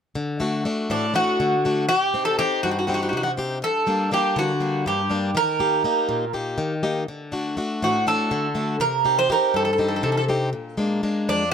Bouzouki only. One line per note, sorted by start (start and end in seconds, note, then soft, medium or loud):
0.91 1.14 D4 medium
1.16 1.86 F#4 medium
1.89 2.25 G4 loud
2.25 2.37 A4 medium
2.39 2.63 G4 medium
2.63 2.70 F#4 medium
2.71 2.77 F#4 medium
2.79 2.86 F#4 soft
2.87 2.93 F#4 soft
2.94 3.01 F#4 medium
3.03 3.08 F#4 soft
3.09 3.16 F#4 soft
3.17 3.22 F#4 medium
3.23 3.31 F#4 medium
3.64 4.13 A4 medium
4.14 4.38 G4 medium
4.39 4.84 F#4 medium
4.87 5.36 G4 medium
5.37 6.31 A#4 loud
7.84 8.06 F#4 medium
8.08 8.80 A4 medium
8.81 9.18 A#4 medium
9.19 9.30 C5 medium
9.32 9.56 A#4 medium
9.56 9.63 A4 medium
9.65 9.71 A4 medium
9.73 9.79 A4 soft
9.81 9.87 A4 soft
9.88 9.94 A4 soft
9.96 10.02 A4 soft
10.04 10.09 A4 medium
10.12 10.16 A4 soft
10.17 10.24 A4 medium
11.29 11.51 D4 medium